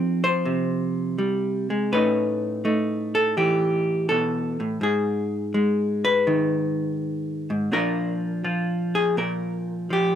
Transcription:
0.00 1.18 F3 medium
0.00 1.88 C4 medium
0.00 1.94 D#4 medium
0.00 0.23 G#4 medium
0.24 1.92 C5 loud
0.45 1.91 C3 medium
1.18 1.69 G3 medium
1.70 1.92 G#3 medium
1.93 4.10 A2 medium
1.93 2.64 A3 soft
1.93 4.81 C#4 soft
1.93 2.65 D#4 medium
1.93 3.14 B4 medium
2.65 4.80 A3 medium
2.65 4.80 D#4 soft
3.15 3.37 A4 loud
3.37 4.80 E3 medium
3.37 4.09 G4 medium
4.09 4.60 B2 medium
4.09 4.82 A4 loud
4.60 4.81 A2 medium
4.81 7.49 G#2 medium
4.81 6.04 G#4 medium
5.54 7.72 G#3 medium
6.05 7.72 B4 loud
6.27 7.70 D#3 medium
7.50 7.71 G#2 medium
7.72 9.16 A#2 medium
7.72 8.43 F3 soft
7.72 10.15 D4 soft
7.72 8.43 F4 medium
7.72 8.95 A#4 loud
8.44 9.89 F3 medium
8.44 10.15 F4 soft
8.95 9.18 G#4 loud
9.17 10.15 A#2 medium
9.17 9.91 A#4 medium
9.90 10.15 F3 medium
9.90 10.15 G4 medium

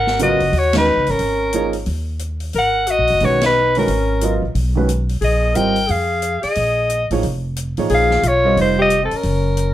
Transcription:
0.00 0.37 G#1 medium
0.00 0.18 A#4 medium
0.00 0.19 F#5 medium
0.07 snare soft
0.19 0.38 C#3 medium
0.19 0.39 F#3 medium
0.19 0.39 B3 medium
0.19 0.39 F4 medium
0.19 0.55 F#4 medium
0.19 0.40 A#4 medium
0.19 0.60 D#5 medium
0.19 closed hi-hat soft
0.40 0.52 F#1 medium
0.40 open hi-hat soft
0.52 0.95 D#2 medium
0.52 0.75 F#4 medium
0.52 open hi-hat soft
0.58 0.77 C#5 medium
0.73 0.86 D#3 medium
0.73 0.86 G#3 medium
0.73 0.86 C#4 soft
0.73 1.11 D#4 medium
0.73 0.86 F#4 soft
0.73 0.87 B4 medium
0.73 snare medium
0.73 ride medium
0.78 1.11 B4 medium
0.97 1.07 C#2 medium
1.06 1.18 G1 medium
1.06 1.76 C#4 medium
1.06 1.76 A#4 medium
1.06 open hi-hat soft
1.19 1.83 G#1 medium
1.19 open hi-hat soft
1.53 1.73 F3 medium
1.53 1.73 A#3 soft
1.53 1.73 D#4 soft
1.53 1.73 G#4 soft
1.53 1.74 C#5 medium
1.53 closed hi-hat soft
1.73 open hi-hat soft
1.86 2.51 D#2 medium
1.86 open hi-hat soft
2.19 closed hi-hat soft
2.40 open hi-hat soft
2.53 2.96 G#1 medium
2.53 2.89 A#4 medium
2.53 open hi-hat soft
2.58 2.92 F#5 medium
2.87 3.21 F#4 medium
2.87 closed hi-hat soft
2.91 3.27 D#5 medium
2.99 3.09 A#1 soft
3.07 3.21 F#1 medium
3.07 open hi-hat soft
3.20 3.85 B1 medium
3.20 3.40 D#3 soft
3.20 3.41 G#3 soft
3.20 3.41 C#4 soft
3.20 3.42 F#4 medium
3.20 3.41 F#4 soft
3.20 3.41 B4 medium
3.20 open hi-hat soft
3.25 3.44 C#5 medium
3.41 3.73 D#4 medium
3.41 snare medium
3.41 ride medium
3.46 3.75 B4 medium
3.75 3.88 D#3 soft
3.75 3.88 G#3 soft
3.75 4.39 C#4 medium
3.75 3.88 C#4 soft
3.75 3.88 F#4 soft
3.75 4.40 A#4 medium
3.75 3.88 B4 medium
3.75 open hi-hat soft
3.87 4.38 G#1 medium
3.87 open hi-hat soft
4.21 4.41 F#3 medium
4.21 4.41 B3 soft
4.21 4.41 F4 medium
4.21 4.41 A#4 soft
4.21 4.42 D#5 medium
4.21 closed hi-hat soft
4.42 4.54 A1 medium
4.55 5.19 B1 medium
4.55 open hi-hat soft
4.75 4.87 D#3 medium
4.75 4.88 G#3 medium
4.75 4.88 C#4 medium
4.75 4.88 F#4 medium
4.75 4.88 B4 medium
4.89 closed hi-hat soft
5.09 open hi-hat soft
5.21 5.53 A#1 medium
5.21 5.56 G#4 medium
5.21 5.58 D#5 medium
5.21 open hi-hat soft
5.54 5.87 G#1 medium
5.54 5.74 G3 medium
5.54 5.74 C4 soft
5.54 5.75 F4 soft
5.54 5.89 A#4 medium
5.54 5.75 A#4 soft
5.54 5.75 D#5 medium
5.54 5.92 G5 medium
5.54 closed hi-hat soft
5.76 open hi-hat soft
5.87 6.40 F2 medium
5.87 6.41 G#4 medium
5.87 6.43 F5 medium
5.87 open hi-hat soft
6.22 closed hi-hat soft
6.42 7.05 G#4 medium
6.42 7.06 D#5 medium
6.42 muted upright bass stroke soft
6.42 open hi-hat soft
6.55 7.07 A#1 medium
6.55 open hi-hat soft
6.89 closed hi-hat soft
7.11 7.22 A1 medium
7.11 7.22 F3 medium
7.11 7.22 A#3 soft
7.11 7.22 D#4 medium
7.11 7.23 G#4 medium
7.11 7.23 C#5 medium
7.11 open hi-hat soft
7.23 7.74 F1 medium
7.23 open hi-hat soft
7.56 closed hi-hat soft
7.77 7.89 A1 medium
7.77 8.21 F3 medium
7.77 8.21 A#3 medium
7.77 8.22 D#4 soft
7.77 8.22 G#4 soft
7.77 8.22 C#5 medium
7.77 open hi-hat soft
7.89 8.21 A#1 medium
7.89 8.26 G#4 medium
7.89 open hi-hat soft
7.94 8.29 F5 medium
8.11 snare soft
8.23 8.54 B1 medium
8.23 8.57 F4 medium
8.23 closed hi-hat soft
8.28 8.59 C#5 medium
8.44 8.88 G3 medium
8.44 8.88 C4 medium
8.44 8.88 F4 medium
8.44 8.89 A#4 medium
8.44 8.89 D#5 medium
8.57 9.07 F1 medium
8.57 8.77 D#4 medium
8.57 open hi-hat soft
8.61 8.79 C5 medium
8.79 9.01 G4 medium
8.79 9.03 D#5 medium
8.90 closed hi-hat soft
9.03 9.15 C4 soft
9.03 9.18 A4 medium
9.11 9.74 C#4 medium
9.11 muted upright bass stroke soft
9.11 open hi-hat soft
9.16 9.74 A#4 medium
9.23 9.74 F#1 medium
9.23 open hi-hat soft
9.57 closed hi-hat soft

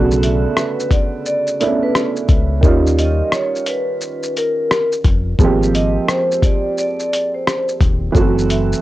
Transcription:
0.00 0.45 B1 loud
0.00 1.57 C#3 medium
0.00 1.55 D3 medium
0.00 1.56 A3 medium
0.00 1.57 B3 medium
0.00 1.58 F#4 medium
0.11 shaker medium
0.23 0.54 E5 medium
0.23 closed hi-hat medium
0.23 shaker soft
0.57 0.88 B4 medium
0.57 cross-stick medium
0.57 shaker medium
0.80 shaker soft
0.91 1.22 D5 medium
0.91 kick medium
0.91 closed hi-hat medium
0.91 shaker soft
1.26 1.78 D5 medium
1.26 shaker medium
1.47 shaker medium
1.60 2.64 A3 medium
1.60 2.64 B3 medium
1.60 2.64 C#4 medium
1.60 2.63 D4 medium
1.60 2.65 E4 medium
1.60 closed hi-hat medium
1.60 shaker soft
1.83 2.13 B4 medium
1.95 cross-stick loud
1.95 shaker medium
2.16 shaker soft
2.29 2.63 C#2 medium
2.29 kick medium
2.29 closed hi-hat medium
2.29 shaker soft
2.61 3.21 D#2 loud
2.61 5.34 D#3 medium
2.61 5.35 G3 medium
2.61 5.35 D#4 medium
2.61 kick loud
2.61 shaker medium
2.65 5.36 C#4 medium
2.65 5.37 F4 medium
2.87 shaker soft
2.99 3.29 D#5 medium
2.99 closed hi-hat medium
2.99 shaker medium
3.32 3.64 C#5 medium
3.32 cross-stick medium
3.32 shaker medium
3.55 shaker soft
3.66 4.32 B4 medium
3.66 closed hi-hat medium
3.66 shaker soft
4.01 shaker medium
4.23 shaker medium
4.37 4.89 A#4 medium
4.37 closed hi-hat medium
4.37 shaker soft
4.71 cross-stick loud
4.71 shaker medium
4.92 shaker soft
5.04 5.33 F1 loud
5.04 kick medium
5.04 closed hi-hat medium
5.04 shaker soft
5.39 5.96 G#1 loud
5.39 8.11 F3 medium
5.39 8.12 G#3 medium
5.39 8.12 A#3 medium
5.39 kick loud
5.39 shaker medium
5.43 8.13 C4 medium
5.43 8.14 G4 medium
5.63 shaker soft
5.75 6.05 D#5 medium
5.75 closed hi-hat medium
5.75 shaker soft
6.08 6.40 C5 medium
6.08 cross-stick medium
6.08 shaker medium
6.32 shaker soft
6.42 6.74 D5 medium
6.42 kick medium
6.42 closed hi-hat medium
6.42 shaker soft
6.78 7.31 D5 medium
6.78 shaker medium
7.00 shaker medium
7.13 closed hi-hat medium
7.13 shaker soft
7.34 7.65 C5 medium
7.47 cross-stick loud
7.47 shaker medium
7.69 shaker soft
7.81 8.10 D#1 loud
7.81 kick medium
7.81 closed hi-hat medium
7.81 shaker soft
8.12 8.72 F#1 loud
8.12 8.81 E3 medium
8.12 8.81 F#3 medium
8.12 8.81 A3 medium
8.12 kick medium
8.12 shaker medium
8.16 8.81 C4 medium
8.16 8.81 F#4 medium
8.38 shaker soft
8.50 8.81 E5 medium
8.50 closed hi-hat medium
8.50 shaker soft
8.73 shaker medium

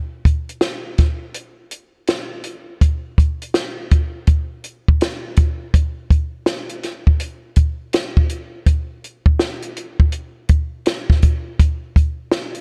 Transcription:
0.25 kick medium
0.25 closed hi-hat medium
0.49 closed hi-hat medium
0.61 snare loud
0.61 closed hi-hat medium
0.98 kick medium
0.98 snare soft
0.98 closed hi-hat medium
1.34 closed hi-hat medium
1.71 closed hi-hat medium
2.07 snare loud
2.07 closed hi-hat medium
2.44 closed hi-hat medium
2.81 kick medium
2.81 closed hi-hat medium
3.18 kick medium
3.18 closed hi-hat medium
3.42 closed hi-hat medium
3.54 snare loud
3.54 closed hi-hat loud
3.91 kick medium
3.91 closed hi-hat medium
4.27 kick loud
4.27 closed hi-hat medium
4.64 closed hi-hat medium
4.88 kick loud
5.01 snare loud
5.01 closed hi-hat medium
5.36 kick loud
5.36 closed hi-hat medium
5.74 kick loud
5.74 closed hi-hat medium
6.10 kick medium
6.10 closed hi-hat soft
6.46 snare loud
6.46 closed hi-hat medium
6.69 closed hi-hat medium
6.83 snare soft
6.83 closed hi-hat medium
7.07 kick medium
7.20 closed hi-hat medium
7.56 kick medium
7.56 closed hi-hat medium
7.93 snare loud
7.93 closed hi-hat medium
8.17 kick medium
8.29 closed hi-hat medium
8.66 kick medium
8.66 closed hi-hat medium
9.04 closed hi-hat medium
9.26 kick medium
9.39 snare loud
9.39 closed hi-hat medium
9.62 closed hi-hat soft
9.76 closed hi-hat medium
10.00 kick medium
10.12 closed hi-hat medium
10.49 kick medium
10.49 closed hi-hat medium
10.86 snare loud
10.86 closed hi-hat medium
11.10 kick medium
11.10 snare soft
11.22 kick medium
11.22 closed hi-hat medium
11.59 kick medium
11.59 closed hi-hat medium
11.96 kick medium
11.96 closed hi-hat soft
12.32 snare loud
12.32 closed hi-hat medium
12.54 closed hi-hat medium

